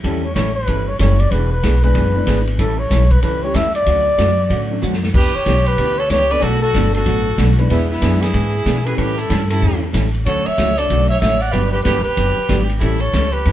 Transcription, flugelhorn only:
0.04 A4
0.24 C#5
0.35 C#5
0.56 B4
0.88 C#5
1.00 C#5
1.20 D5
1.31 B4
1.52 B4
1.84 B4
2.59 A4
2.79 C#5
3.11 B4
3.23 B4
3.43 C#5
3.56 E5
3.75 D5
5.14 B4
5.35 C#5
5.67 B4
5.99 C#5
6.11 C#5
6.31 D5
6.40 G#4 A4
6.62 A4
6.95 A4
7.70 E4
7.90 E4
8.22 G#4
8.86 B4
8.97 B4
9.18 A4
9.50 A4
10.26 C#5
10.46 E5
10.78 D5
11.09 E5
11.21 E5
11.41 F#5
11.52 B4
11.72 B4
11.84 B4
12.04 B4
12.80 A4
13.01 C#5
13.33 B4

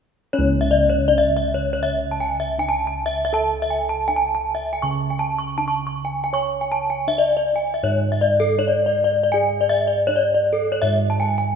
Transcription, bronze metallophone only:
0.33 C#5
0.61 E5
0.71 D5
0.90 C#5
1.08 D5
1.18 E5
1.37 E5
1.54 C#5
1.73 C#5
1.83 E5
2.11 A5
2.20 G#5
2.40 E5
2.59 G#5
2.69 A5
2.87 A5
3.06 E5
3.25 E5
3.34 A5
3.62 E5
3.71 G#5
3.89 A5
4.08 G#5
4.16 A5
4.35 A5
4.55 E5
4.73 G#5
4.82 C#6
5.10 G#5
5.19 A5
5.39 C#6
5.58 A5
5.68 C#6
5.87 C#6
6.05 G#5
6.24 G#5
6.34 C#6
6.61 G#5
6.72 A5
6.90 G#5
7.08 E5
7.18 D5
7.37 D5
7.56 G#5
7.74 E5
7.84 C#5
8.12 E5
8.21 D5
8.40 A4
8.59 C#5
8.68 D5
8.86 D5
9.04 D5
9.23 D5
9.32 G#5
9.61 D5
9.69 E5
9.87 D5
10.07 C#5
10.16 D5
10.35 D5
10.53 A4
10.72 C#5
10.82 E5
11.10 A5
11.20 G#5
11.38 G#5

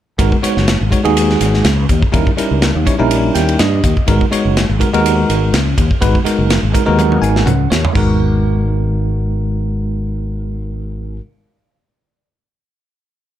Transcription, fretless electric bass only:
0.19 G#1
0.43 muted fretless electric bass stroke
0.57 F#1
0.81 G#1
1.05 D#2
1.40 G#1
1.64 C#2
1.89 D#2
2.13 D#2
2.38 muted fretless electric bass stroke
2.51 C#2
2.75 D#2
2.99 A#1
3.35 D#2
3.60 G2
3.84 D#2
4.08 G#1
4.32 muted fretless electric bass stroke
4.45 F#1
4.69 G#1
4.93 D#2
5.29 G#1
5.53 C#2
5.78 D#2
6.02 G#1
6.25 muted fretless electric bass stroke
6.38 F#1
6.63 G#1
6.88 D#2
7.22 G#1
7.45 C#2
7.71 D#2
7.95 G#1

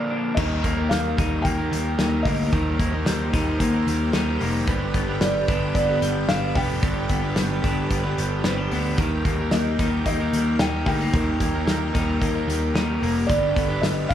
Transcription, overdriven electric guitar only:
Already playing: A#2 D3 F3 A#3 D4 A#4
0.37 D#3 G3 A#3 D#4 A#4
0.77 A#3 D#4 A#4
1.17 G3 A#3 D#4 A#4
1.58 A#3 D#4 A#4
1.99 G3 A#3 D#4 A#4
2.26 G3 A#3 D#4 A#4
2.53 D#3 G3 A#3 D#4 A#4
2.92 A#3 D#4 A#4
3.33 G3 A#3 D#4 A#4
3.72 A#3 D#4 A#4
4.12 G3 A#3 D#4 A#4
4.40 G3 A#3 D#4 A#4
4.66 G2 D3 G3 B3 D4 B4
5.07 G3 B3 D4 B4
5.48 G3 B3 D4 B4
5.88 G3 B3 D4 B4
6.29 G3 B3 D4 B4
6.55 G3 B3 D4 B4
6.81 G2 D3 G3 B3 D4 B4
7.22 G3 B3 D4 B4
7.62 G3 B3 D4 B4
8.03 G3 B3 D4 B4
8.44 G3 B3 D4 B4
8.71 G3 B3 D4 B4
8.98 D#3 G3 A#3 D#4 A#4
9.39 A#3 D#4 A#4
9.79 G3 A#3 D#4 A#4
10.20 A#3 D#4 A#4
10.60 G3 A#3 D#4 A#4
10.87 G3 A#3 D#4 A#4
11.13 D#3 G3 A#3 D#4 A#4
11.54 A#3 D#4 A#4
11.94 G3 A#3 D#4 A#4
12.35 A#3 D#4 A#4
12.74 G3 A#3 D#4 A#4
13.00 G3 A#3 D#4 A#4
13.28 G2 D3 G3 B3 D4 B4
13.69 G3 B3 D4 B4
14.09 G3 B3 D4

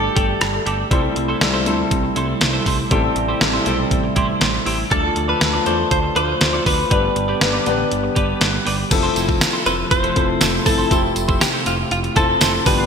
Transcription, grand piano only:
Already playing: G3 A3 D4 A4
0.91 G3 C4 E4 A4
1.41 G3 C4 E4 A4
1.66 G3 C4 E4 A4
2.91 G3 C4 E4 A4
3.41 G3 C4 E4 A4
3.66 G3 C4 E4 A4
4.91 F3 A3 D4 A4
5.41 F3 A3 D4 A4
5.66 F3 A3 D4 A4
6.91 G3 B3 D4 B4
7.41 G3 B3 D4 B4
7.66 G3 B3 D4 B4
8.91 F3 C4 E4 A4
10.16 F3 C4 E4 A4
10.66 F3 C4 E4 A4
10.91 F3 C4 E4 G4
12.16 F3 C4 E4 A4
12.66 F3 B3 D4 G4

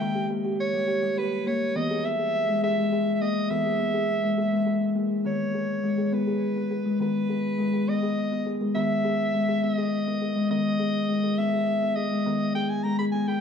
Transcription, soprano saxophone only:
0.00 G5
0.60 C#5
1.18 B4
1.47 C#5
1.76 D#5
2.05 E5
2.64 E5
3.14 E5
3.21 D#5
3.51 E5
5.27 C#5
6.14 B4
7.02 B4
7.89 D#5
8.75 E5
9.64 E5
9.75 D#5
10.51 D#5
11.38 E5
11.96 D#5
12.55 G5
12.70 G#5
12.83 A#5
12.99 B5
13.12 G#5
13.28 G5

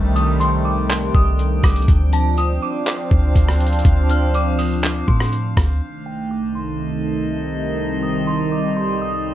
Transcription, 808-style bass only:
Already playing: C2
1.15 C2
1.64 C2
1.88 D2
3.11 D2
3.36 D2
3.85 D2
5.08 A2
5.57 D2

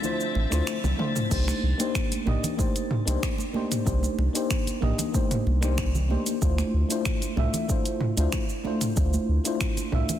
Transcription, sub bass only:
0.35 A1
0.52 D2
0.84 C2
1.31 C2
1.63 C2
2.27 A#1
3.07 C2
3.87 C2
4.18 C2
4.82 A#1
5.46 C2
6.42 D2
6.74 D2
7.37 C2
8.18 D2
8.97 D2
9.28 D2
9.92 C2

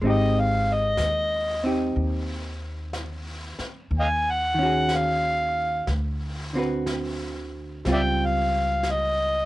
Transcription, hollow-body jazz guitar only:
0.02 G#3 C4 D#4
0.07 G4
1.64 C4 D#4 G4
4.54 D#3
4.59 C#4 F#4
4.65 G#4
6.53 D3 C4 F#4
6.58 B4
7.86 G3 C4 F4

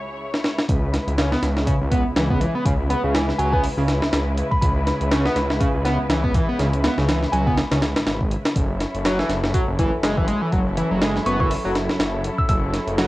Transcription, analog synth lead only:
1.17 C#3
1.32 B3
1.67 C#3
1.91 B3
2.16 E3
2.30 B3
2.41 E3
2.55 B3
2.65 C#3
2.90 B3
3.04 C#3
3.15 E3
3.39 F#3
3.53 B3
3.78 C#3
5.11 C#3
5.25 B3
5.60 C#3
5.85 B3
6.10 E3
6.24 B3
6.35 E3
6.49 B3
6.59 C#3
6.84 B3
6.98 C#3
7.08 E3
7.33 F#3
7.47 B3
7.71 C#3
9.05 F#3
9.19 E3
9.54 F#3
9.79 E3
10.03 G#3
10.18 E3
10.28 G#3
10.42 E3
10.53 F#3
10.77 E3
10.91 F#3
11.02 G#3
11.26 B3
11.40 E3
11.65 F#3
12.98 F#3

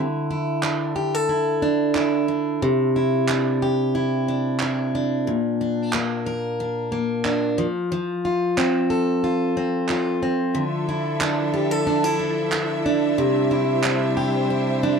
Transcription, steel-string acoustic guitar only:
Already playing: D3 E4
0.31 E4
0.63 D4
0.96 G4
1.15 A4
1.29 E4
1.62 D4
1.96 E4
2.28 D4
2.62 C3
2.96 E4
3.29 D4
3.62 G4
3.95 E4
4.28 D4
4.62 E4
4.95 D4
5.27 A#2
5.61 D4
5.94 A#3
6.26 A#4
6.60 D4
6.92 A#3
7.25 D4
7.58 F3
7.92 F3
8.25 F4
8.57 C4
8.90 A4
9.24 F4
9.57 C4
9.90 F4
10.23 C4
10.55 D3
10.89 E4
11.21 D4
11.54 G4
11.71 A4
11.87 D4
12.04 E4
12.19 D4
12.52 E4
12.86 D4
13.18 C3
13.51 E4
13.84 D4
14.17 G4
14.50 E4
14.83 D4

